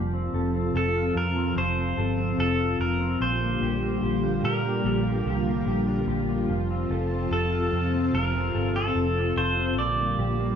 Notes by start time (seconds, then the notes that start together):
Already playing: F1 C3 F3 C4 F4 A5
0.13 C4
0.33 F1 A4
0.55 C4
0.74 F1 A4
0.95 F4
1.15 F2 A#4
1.36 C4
1.56 F1 F3 C5
1.77 C4
1.97 G1 A4
2.18 C4
2.38 F1 A4
2.59 F4
2.79 F1 A#4
3.01 C4
3.20 A#1 A#2 D3 G3 A#3 G4 C5
3.41 A#3
3.61 A#1 G4
3.82 A#3
4.02 A#1 G4
4.23 D4
4.43 A#2 G4 A#4
4.65 A#3
4.84 A#1 A#2
5.06 A#3
5.26 C2 G4
5.47 A#3
5.66 A#1 G4
5.88 D4
6.07 A#1 G4
6.29 A#3
6.49 F1 C3 F3 C4 A5
6.70 C4
6.90 F1 A4
7.11 C4
7.31 F1 A4
7.52 F4
7.72 F2
7.93 C4
8.13 F1 F3 A#4
8.34 C4
8.54 G1 A4
8.75 C4 A4
8.95 F1 A4
9.16 F4
9.37 F1 A4 C5
9.58 C4
9.77 A#1 A#2 D3 G3 A#3 G4 D5
9.99 A#3
10.18 A#1 G4
10.40 A#3